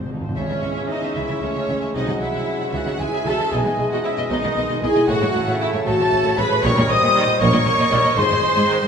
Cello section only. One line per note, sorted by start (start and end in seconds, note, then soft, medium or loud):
0.00 0.27 G#2 medium
0.37 0.42 C#3 medium
0.50 0.55 C#3 medium
0.63 0.68 C#3 medium
0.76 0.81 C#3 medium
1.02 1.08 C#3 medium
1.16 1.21 C#3 medium
1.29 1.34 C#3 medium
1.42 1.47 C#3 medium
1.55 1.61 C#3 medium
1.68 1.74 C#3 medium
1.82 1.87 C#3 medium
1.94 2.00 C3 loud
2.08 2.13 C3 medium
2.21 2.26 C3 medium
2.34 2.39 C3 medium
2.60 2.65 C3 medium
2.73 2.78 C#3 loud
2.86 2.91 C#3 medium
2.99 3.04 C#3 medium
3.12 3.18 C#3 loud
3.25 3.31 C#3 medium
3.39 3.44 C#3 medium
3.52 3.57 B2 loud
3.65 3.70 B2 medium
3.78 3.83 B2 medium
3.92 3.97 B2 loud
4.18 4.23 B2 medium
4.30 4.36 B2 loud
4.44 4.49 B2 medium
4.56 4.62 B2 medium
4.69 4.75 B2 loud
4.82 4.88 B2 medium
4.96 5.01 B2 medium
5.09 5.14 A2 loud
5.22 5.27 A2 medium
5.34 5.40 A2 medium
5.47 5.53 A2 loud
5.74 5.79 A2 medium
5.87 5.92 A2 loud
6.00 6.05 A2 medium
6.12 6.17 A2 medium
6.25 6.30 A2 loud
6.37 6.43 A2 medium
6.50 6.55 A2 medium
6.63 6.68 A#2 loud
6.76 6.81 A#2 medium
6.89 6.94 A#2 medium
7.01 7.07 A#2 loud
7.27 7.32 A#2 medium
7.40 7.45 A#2 loud
7.53 7.58 A#2 loud
7.66 7.71 A#2 medium
7.79 7.84 A#2 loud
7.91 7.96 A#2 medium
8.05 8.10 A#2 medium
8.17 8.22 G#2 loud
8.31 8.36 G#2 medium
8.43 8.48 G#2 medium
8.56 8.61 G#2 loud
8.82 8.87 G#2 medium